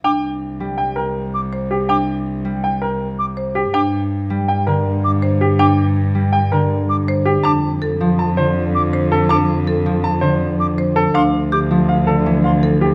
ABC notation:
X:1
M:5/4
L:1/8
Q:1/4=162
K:Cmix
V:1 name="Flute"
d' z6 d' z2 | d' z6 d' z2 | d' z6 d' z2 | d' z6 d' z2 |
d' z6 d' z2 | d' z6 d' z2 | c' z d' z4 c' z2 |]
V:2 name="Grand piano"
g z3 g B z3 G | g z3 g B z3 G | g z3 g B z3 G | g z3 g B z3 G |
a z3 a c z3 A | a z3 a c z3 A | f z3 f A z f z G |]
V:3 name="Marimba"
D z6 z c z | D z6 z c z | D z6 z c z | D z6 z c z |
D z A z4 z c z | D z A z4 z c z | D z G z4 z A z |]
V:4 name="Harp" clef=bass
z3 G,6- G,- | G,3 G,6- G,- | G,3 G,2 D,4- D,- | D,3 G,2 D,4- D, |
z3 F,2 D,4- D,- | D,3 F,2 D,4- D, | z3 F,2 D, E,4 |]
V:5 name="Cello" clef=bass
C,,8- C,,2- | C,,8- C,,2 | G,,8- G,,2- | G,,8- G,,2 |
F,,8- F,,2- | F,,8- F,,2 | D,,8- D,,2 |]